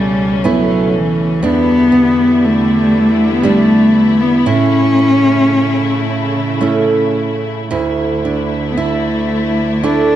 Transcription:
0.00 1.39 C#2 medium
0.00 1.41 B2 medium
0.00 1.43 C#3 medium
0.00 0.48 G3 medium
0.00 0.44 A3 medium
0.00 1.39 A3 medium
0.00 1.40 C#4 medium
0.00 0.45 E4 medium
0.44 0.97 F#3 medium
0.44 1.53 A3 medium
0.44 1.92 B3 medium
0.44 1.43 E4 medium
0.96 1.46 E3 medium
1.42 4.45 E2 medium
1.42 4.42 D3 medium
1.42 4.43 G3 medium
1.42 2.47 B3 loud
1.42 3.42 D4 medium
1.42 7.67 E4 medium
1.92 3.42 B3 medium
2.45 3.33 A3 medium
3.33 3.46 B3 medium
3.43 4.57 G3 medium
3.43 4.22 A3 loud
3.43 4.57 B3 medium
3.43 4.46 D4 medium
4.21 4.48 B3 medium
4.46 7.71 A2 medium
4.46 7.68 C#3 medium
4.46 7.68 A3 medium
4.46 6.61 C#4 loud
4.46 6.62 E4 medium
4.99 6.60 C#4 soft
6.61 9.83 A3 medium
6.61 7.82 C#4 medium
6.61 7.71 E4 medium
7.71 10.16 D2 medium
7.71 10.16 D3 medium
7.71 10.16 A3 medium
7.71 8.76 E4 medium
7.71 10.16 E4 medium
8.25 9.83 D4 soft
8.71 8.79 B3 medium
8.77 9.85 A3 medium
8.77 9.83 E4 medium
9.83 10.16 A3 medium
9.83 10.16 D4 medium
9.83 10.16 E4 medium

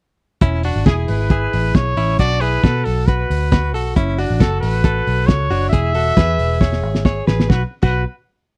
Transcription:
0.41 0.70 E1 loud
0.41 0.64 C#4 medium
0.41 0.64 E4 medium
0.41 kick medium
0.41 closed hi-hat medium
0.63 0.87 D4 medium
0.63 0.86 F#4 medium
0.63 open hi-hat medium
0.76 0.85 G#1 medium
0.86 1.05 E1 medium
0.86 1.28 E4 medium
0.86 0.96 G#4 medium
0.86 1.28 G#4 medium
0.86 kick loud
0.86 snare loud
0.86 closed hi-hat medium
1.08 1.46 G#1 medium
1.08 1.77 B4 medium
1.08 open hi-hat medium
1.30 1.93 E4 medium
1.30 1.93 G#4 medium
1.30 kick loud
1.30 closed hi-hat medium
1.53 1.72 A1 medium
1.53 open hi-hat medium
1.75 2.19 C#5 loud
1.75 kick loud
1.75 snare loud
1.75 closed hi-hat medium
1.97 2.16 A1 medium
1.97 2.19 C#4 medium
1.97 2.19 E4 medium
1.97 open hi-hat medium
2.19 2.57 B1 loud
2.19 2.42 D4 medium
2.19 2.41 F#4 loud
2.19 2.42 D5 loud
2.19 kick medium
2.19 closed hi-hat medium
2.41 2.64 E4 medium
2.41 2.63 G#4 medium
2.41 2.86 B4 loud
2.41 open hi-hat medium
2.64 2.82 B2 medium
2.64 3.05 F#4 medium
2.64 3.05 A4 medium
2.64 kick loud
2.64 snare loud
2.64 closed hi-hat medium
2.84 3.24 B1 medium
2.84 3.08 A4 medium
2.84 open hi-hat medium
3.07 3.50 F#4 medium
3.07 3.73 B4 medium
3.07 3.49 B4 medium
3.07 kick loud
3.07 closed hi-hat medium
3.30 3.74 D2 medium
3.30 open hi-hat medium
3.52 3.74 F#4 medium
3.52 3.74 B4 medium
3.52 kick loud
3.52 snare loud
3.52 closed hi-hat medium
3.74 3.93 B1 medium
3.74 3.96 F#4 medium
3.74 3.96 A4 medium
3.74 open hi-hat medium
3.96 4.24 F#1 loud
3.96 4.18 C#4 medium
3.96 4.18 E4 medium
3.96 kick loud
3.96 closed hi-hat medium
4.18 4.41 D4 medium
4.18 4.40 F#4 medium
4.18 open hi-hat medium
4.30 4.39 A1 medium
4.40 4.59 F#1 medium
4.40 4.82 F#4 medium
4.40 4.60 A4 medium
4.40 4.82 A4 medium
4.40 kick loud
4.40 snare loud
4.40 closed hi-hat medium
4.61 5.00 A1 loud
4.61 5.28 B4 medium
4.61 open hi-hat medium
4.84 5.47 F#4 medium
4.84 5.47 A4 medium
4.84 kick loud
4.84 closed hi-hat medium
5.07 5.26 B1 medium
5.07 open hi-hat medium
5.26 5.47 C#2 medium
5.26 5.69 C#5 loud
5.26 kick loud
5.26 snare loud
5.26 closed hi-hat medium
5.50 5.69 F#1 medium
5.50 5.73 D4 medium
5.50 5.73 F#4 medium
5.50 open hi-hat medium
5.70 6.10 E1 loud
5.70 5.95 G#4 loud
5.70 7.22 E5 loud
5.70 kick medium
5.70 closed hi-hat medium
5.74 5.95 E4 medium
5.94 6.17 F#4 medium
5.94 6.17 A4 medium
5.94 open hi-hat medium
6.17 6.36 E2 medium
6.17 6.59 G#4 medium
6.17 6.59 B4 medium
6.17 kick loud
6.17 snare loud
6.17 closed hi-hat medium
6.38 6.83 E1 medium
6.38 open hi-hat medium
6.61 7.03 G#4 medium
6.61 7.03 C#5 medium
6.61 kick loud
6.61 snare medium
6.73 snare medium
6.83 7.21 G#1 medium
6.95 snare medium
7.05 7.27 G#4 medium
7.05 7.27 C#5 medium
7.05 kick loud
7.05 snare medium
7.27 7.47 A1 medium
7.27 7.49 G#4 medium
7.27 7.50 B4 medium
7.27 snare loud
7.40 snare medium
7.50 7.62 B1 loud
7.50 7.62 F#4 medium
7.50 7.62 B4 medium
7.50 kick loud
7.50 snare medium
7.82 8.04 B1 loud
7.82 8.04 F#4 medium
7.82 8.04 B4 medium
7.82 kick loud
7.82 crash medium

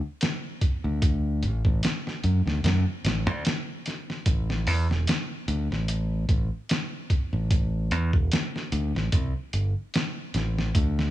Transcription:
0.21 snare loud
0.21 closed hi-hat medium
0.61 kick loud
0.61 closed hi-hat medium
0.84 1.44 D2 medium
1.02 kick loud
1.02 closed hi-hat medium
1.43 1.62 A1 medium
1.43 closed hi-hat medium
1.65 1.81 A1 medium
1.65 kick medium
1.83 snare loud
1.83 closed hi-hat medium
2.07 snare soft
2.24 2.43 F#2 medium
2.24 closed hi-hat medium
2.46 2.64 D2 medium
2.46 snare soft
2.64 2.84 F#2 loud
2.64 snare loud
2.64 closed hi-hat medium
3.05 3.27 A1 medium
3.05 snare loud
3.05 closed hi-hat medium
3.27 3.43 D2 medium
3.45 snare loud
3.45 closed hi-hat medium
3.86 snare soft
3.86 closed hi-hat medium
4.10 snare soft
4.26 4.67 A1 loud
4.26 kick loud
4.26 closed hi-hat medium
4.50 snare medium
4.67 4.86 E2 medium
4.67 open hi-hat medium
4.89 5.05 E1 medium
4.89 snare soft
5.07 snare loud
5.07 closed hi-hat medium
5.48 5.67 D2 loud
5.48 closed hi-hat medium
5.71 6.26 A1 medium
5.71 snare soft
5.88 closed hi-hat medium
6.29 6.49 A1 medium
6.29 kick loud
6.29 closed hi-hat medium
6.69 snare loud
6.69 closed hi-hat medium
7.10 kick loud
7.10 closed hi-hat medium
7.33 7.92 A1 medium
7.51 kick loud
7.51 closed hi-hat medium
7.91 8.11 E2 medium
7.91 closed hi-hat medium
8.13 8.29 E1 medium
8.13 kick medium
8.32 snare loud
8.32 closed hi-hat medium
8.56 snare soft
8.72 8.92 D2 medium
8.72 closed hi-hat medium
8.95 9.12 A1 medium
8.95 snare medium
9.12 9.32 C2 loud
9.12 kick loud
9.12 closed hi-hat medium
9.53 9.73 G1 medium
9.53 closed hi-hat medium
9.94 snare loud
9.94 closed hi-hat medium
10.34 10.70 A1 medium
10.34 snare soft
10.34 closed hi-hat medium
10.58 snare soft
10.75 11.11 D2 loud
10.75 kick loud
10.75 closed hi-hat medium
10.99 snare medium

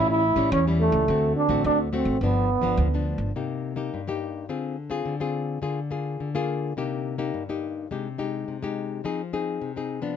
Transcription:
0.00 0.31 A1 loud
0.00 0.50 A2 medium
0.00 0.22 G3 medium
0.00 0.23 C#4 medium
0.00 0.23 E4 medium
0.11 0.50 E4 loud
0.36 0.49 A1 medium
0.36 0.61 G3 medium
0.36 0.61 C#4 medium
0.36 0.61 E4 medium
0.52 0.88 E2 loud
0.52 1.06 E3 medium
0.52 0.65 C#4 medium
0.68 1.05 G3 medium
0.68 1.05 C#4 medium
0.68 1.05 E4 medium
0.80 1.33 A3 medium
0.92 1.05 C#2 medium
1.08 1.32 D2 loud
1.08 1.63 D3 medium
1.08 1.47 A3 medium
1.08 1.47 C4 medium
1.08 1.47 F#4 medium
1.36 1.63 D4 medium
1.49 1.62 A1 medium
1.49 1.88 A3 medium
1.49 1.88 C4 medium
1.49 1.88 F#4 medium
1.64 2.01 D2 medium
1.64 2.19 A2 medium
1.64 1.78 D4 medium
1.93 2.17 A3 medium
1.93 2.23 C4 medium
1.93 2.17 C4 medium
1.93 2.17 F#4 medium
2.05 2.18 A1 medium
2.21 2.57 G1 medium
2.21 2.76 G2 medium
2.21 2.49 F3 medium
2.21 3.07 B3 medium
2.21 2.49 B3 medium
2.21 2.49 D4 medium
2.61 2.75 G1 medium
2.61 2.87 F3 medium
2.61 2.87 B3 medium
2.61 2.88 D4 medium
2.77 3.14 D2 medium
2.77 3.33 D3 medium
2.94 3.31 F3 medium
2.94 3.31 B3 medium
2.94 3.32 D4 medium
3.18 3.31 G1 medium
3.36 3.89 C3 medium
3.36 3.73 A#3 medium
3.36 3.74 D#4 soft
3.36 3.74 G4 medium
3.76 4.01 A#3 medium
3.76 4.01 D#4 medium
3.76 4.01 G4 medium
3.94 4.47 G2 medium
4.07 4.45 A#3 medium
4.07 4.45 D#4 medium
4.07 4.45 G4 medium
4.49 5.03 D3 medium
4.49 4.75 C4 medium
4.49 4.76 F4 medium
4.49 4.76 G#4 medium
4.90 5.14 C4 medium
4.90 5.14 F4 medium
4.90 5.15 G#4 medium
5.05 5.59 D3 medium
5.20 5.58 C4 medium
5.20 5.58 F4 medium
5.20 5.58 G#4 medium
5.62 6.16 D3 medium
5.62 5.79 A#3 soft
5.62 5.79 F4 medium
5.62 5.79 G#4 medium
5.91 6.29 A#3 medium
5.91 6.29 F4 medium
5.91 6.29 G#4 medium
6.20 6.74 D3 medium
6.35 6.72 A#3 medium
6.35 6.72 F4 medium
6.35 6.72 G#4 medium
6.77 7.31 C3 medium
6.77 7.15 A#3 medium
6.77 7.15 D#4 medium
6.77 7.15 G4 medium
7.18 7.42 A#3 medium
7.18 7.42 D#4 medium
7.18 7.43 G4 medium
7.34 7.87 G2 medium
7.49 7.86 A#3 medium
7.49 7.86 D#4 medium
7.49 7.87 G4 medium
7.91 8.44 C3 medium
7.91 8.07 G#3 medium
7.91 8.07 D#4 medium
7.91 8.08 G4 medium
8.18 8.56 G#3 medium
8.18 8.57 D#4 medium
8.18 8.57 G4 medium
8.48 9.01 C3 medium
8.63 9.00 G#3 medium
8.63 9.00 D#4 medium
8.63 9.00 G4 medium
9.04 9.58 F3 medium
9.04 9.21 C4 medium
9.04 9.21 D#4 medium
9.04 9.21 G#4 medium
9.33 9.71 C4 medium
9.33 9.71 D#4 medium
9.33 9.71 G#4 medium
9.61 10.15 C3 medium
9.76 9.99 C4 medium
9.76 10.00 D#4 medium
9.76 10.00 G#4 medium
10.02 10.16 F3 medium
10.02 10.16 B3 medium
10.02 10.16 D4 medium

